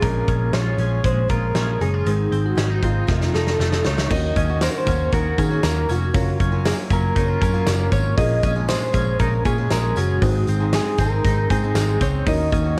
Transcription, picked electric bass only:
0.02 0.23 A#1 loud
0.28 0.49 A#1 loud
0.53 0.74 A#1 loud
0.78 0.99 A#1 loud
1.04 1.25 A#1 loud
1.30 1.51 A#1 medium
1.55 1.76 A#1 medium
1.81 2.02 F#1 medium
2.06 2.27 G#1 loud
2.32 2.53 G#1 loud
2.57 2.78 G#1 loud
2.83 3.04 G#1 loud
3.09 3.30 F1 loud
3.34 3.55 F1 medium
3.59 3.80 F1 loud
3.85 4.06 C#2 medium
4.10 4.31 D#2 loud
4.36 4.67 D#2 loud
4.86 5.08 D#2 loud
5.13 5.34 D#2 loud
5.38 5.59 D#3 loud
5.63 5.84 D#2 loud
5.89 6.10 F1 medium
6.15 6.35 F#1 loud
6.40 6.71 F#1 loud
6.91 7.12 F#1 loud
7.16 7.37 F#1 loud
7.42 7.63 F#2 loud
7.67 7.88 F#1 loud
7.92 8.13 G#1 medium
8.18 8.39 A#1 loud
8.43 8.75 A#1 medium
8.94 9.15 A#1 loud
9.20 9.41 A#1 loud
9.46 9.67 A#2 loud
9.72 9.92 A#1 loud
9.97 10.18 F#1 medium
10.22 10.43 G#1 loud
10.48 10.79 G#1 loud
10.99 11.20 G#1 medium
11.25 11.46 G#1 loud
11.51 11.71 G#2 loud
11.74 11.96 G#1 loud
12.01 12.22 C#2 medium
12.26 12.48 D#2 loud
12.53 12.79 D#2 loud

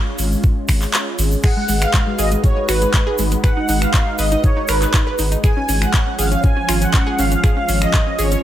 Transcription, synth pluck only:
1.44 1.53 G#4 loud
1.57 1.66 G#3 medium
1.69 1.78 G#3 medium
1.94 2.03 G#3 medium
2.07 2.16 G#3 medium
2.19 2.28 G#4 medium
2.32 2.41 G#3 medium
2.44 2.53 G#3 medium
2.57 2.66 G#3 medium
2.69 2.78 F#4 medium
2.82 2.91 G#3 medium
2.94 3.03 G#3 medium
3.07 3.16 G#4 loud
3.19 3.28 G#3 medium
3.32 3.41 G#3 medium
3.44 3.53 B4 loud
3.57 3.66 D#4 medium
3.69 3.78 D#4 medium
3.94 4.03 D#4 medium
4.07 4.16 D#4 medium
4.19 4.28 B4 medium
4.32 4.41 D#4 medium
4.44 4.53 D#4 medium
4.57 4.66 D#4 medium
4.69 4.78 A#4 loud
4.82 4.91 D#4 medium
4.94 5.03 D#4 medium
5.07 5.16 B4 medium
5.19 5.28 D#4 medium
5.32 5.41 D#4 medium
5.44 5.53 G#4 loud
5.57 5.66 C#4 medium
5.69 5.78 C#4 medium
5.94 6.03 C#4 medium
6.07 6.16 C#4 medium
6.19 6.28 G#4 medium
6.32 6.41 C#4 medium
6.44 6.53 C#4 medium
6.57 6.66 C#4 medium
6.69 6.78 F4 medium
6.82 6.91 C#4 medium
6.94 7.03 C#4 medium
7.07 7.16 G#4 medium
7.19 7.28 C#4 medium
7.32 7.41 C#4 medium
7.44 7.53 G#4 loud
7.57 7.66 C#4 medium
7.69 7.78 C#4 medium
7.94 8.03 C#4 medium
8.07 8.16 C#4 medium
8.19 8.28 G#4 medium
8.32 8.41 C#4 medium

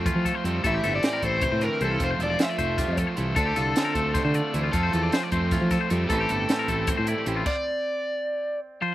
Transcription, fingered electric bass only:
0.15 0.31 F3 medium
0.44 0.60 F2 medium
0.64 0.80 A1 medium
0.83 0.99 G1 medium
1.22 1.46 A1 medium
1.52 1.68 A2 medium
1.81 1.96 C2 medium
2.00 2.16 F1 medium
2.19 2.35 E1 medium
2.59 2.82 F1 medium
2.88 3.04 F2 medium
3.18 3.33 C2 medium
3.36 3.52 D2 medium
3.57 3.72 C2 medium
3.95 4.18 D2 medium
4.25 4.40 D3 medium
4.54 4.69 D2 medium
4.74 4.89 F2 medium
4.94 5.09 E2 medium
5.32 5.55 F2 medium
5.61 5.77 F3 medium
5.91 6.06 F2 medium
6.10 6.26 A1 loud
6.30 6.45 G1 medium
6.69 6.92 A1 medium
6.99 7.14 A2 medium
7.27 7.42 A1 loud

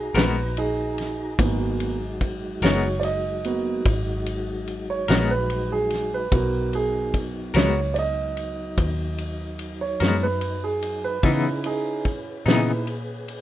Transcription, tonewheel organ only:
0.00 1.34 D#4 medium
0.00 1.34 F#4 medium
0.00 1.34 A#5 medium
1.39 6.28 F#3 medium
1.39 6.28 G#3 medium
1.39 6.28 D#4 medium
1.39 6.28 F#4 medium
6.31 11.19 F#3 medium
6.31 11.19 D#4 medium
11.23 13.41 G#4 medium
11.23 13.41 B4 medium

